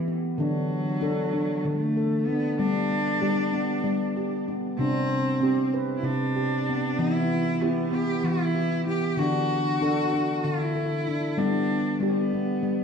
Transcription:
Already playing: cello E3, handpan E3
0.08 handpan B3
0.38 handpan D3 D4, cello F#3
1.01 handpan D4 A4
1.33 handpan D4
1.65 handpan D3, cello A3
1.97 handpan A4
2.26 cello B3, handpan D4
2.58 handpan G3 B3, cello D4
3.22 handpan G3 G4
3.53 handpan B3
3.84 handpan G3
4.17 handpan G4
4.48 handpan B3
4.79 handpan C3 D4, cello C4
5.41 handpan C4 G4
5.74 handpan B4
5.97 cello E4
6.03 handpan C3, cello D4
6.36 handpan G4
6.69 handpan B3
6.99 handpan E3 B3, cello E4
7.62 cello B3, handpan E4 G4
7.92 handpan B3, cello G4
8.24 handpan E3, cello E4
8.55 handpan G4
8.86 handpan B3, cello G4
9.17 handpan D3 D4, cello F#4
9.81 handpan D4 A4
10.13 handpan D4
10.44 handpan D3, cello E4
10.76 handpan A4
11.08 handpan D4
11.37 handpan G3 B3, cello D4
12.00 handpan G3 G4, cello B3
12.34 handpan B3
12.63 handpan G3

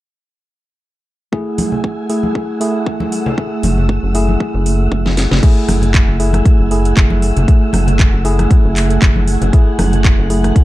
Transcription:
1.32 tine electric piano A3 E4 G#4, string machine A3 F#5 G#5 E6, kick
1.58 open hi-hat, high conga
1.72 low conga
1.84 kick
2.09 tine electric piano A3 E4 G#4, open hi-hat
2.23 high conga
2.35 kick
2.60 tine electric piano A3 E4 G#4, open hi-hat
2.86 kick
3.00 high conga
3.12 open hi-hat
3.26 low conga
3.37 tine electric piano A3 E4 G#4, kick
3.63 analog synth bass F#1, open hi-hat, high conga
3.78 low conga
3.89 kick
4.03 analog synth bass F#1
4.14 tine electric piano A3 E4 G#4, open hi-hat
4.29 high conga
4.40 kick
4.54 analog synth bass F#1
4.66 open hi-hat
4.92 analog synth bass F#1, kick
5.06 snare, high conga
5.17 snare, open hi-hat
5.31 analog synth bass F#1, snare, low conga
5.42 tine electric piano A3 E4 G#4, string machine A3 F#5 G#5 E6, kick, closed hi-hat, crash
5.69 analog synth bass F#1, cross-stick, open hi-hat, high conga
5.82 closed hi-hat, low conga
5.94 kick, clap, closed hi-hat
6.08 analog synth bass F#1
6.20 tine electric piano A3 E4 G#4, open hi-hat
6.33 cross-stick, closed hi-hat, high conga
6.45 kick, closed hi-hat
6.60 analog synth bass F#1
6.71 tine electric piano A3 E4 G#4, open hi-hat
6.85 closed hi-hat
6.97 analog synth bass F#1, kick, clap, closed hi-hat
7.10 high conga
7.22 open hi-hat
7.37 analog synth bass F#1, closed hi-hat, low conga
7.48 tine electric piano A3 E4 G#4, kick, closed hi-hat
7.73 analog synth bass F#1, cross-stick, open hi-hat, high conga
7.87 closed hi-hat, low conga
7.99 kick, clap, closed hi-hat
8.13 analog synth bass F#1
8.24 tine electric piano A3 E4 G#4, open hi-hat
8.39 cross-stick, closed hi-hat, high conga
8.51 kick, closed hi-hat
8.65 analog synth bass F#1
8.76 clap, open hi-hat
8.90 closed hi-hat
9.02 analog synth bass F#1, kick, clap, closed hi-hat
9.16 high conga
9.27 open hi-hat
9.42 analog synth bass F#1, closed hi-hat, low conga
9.53 tine electric piano A3 E4 G#4, string machine F#6, kick, closed hi-hat
9.79 analog synth bass F#1, cross-stick, open hi-hat, high conga
9.93 closed hi-hat, low conga
10.04 kick, clap, closed hi-hat
10.19 analog synth bass F#1
10.30 tine electric piano A3 E4 G#4, open hi-hat
10.44 cross-stick, closed hi-hat, high conga
10.56 kick, closed hi-hat

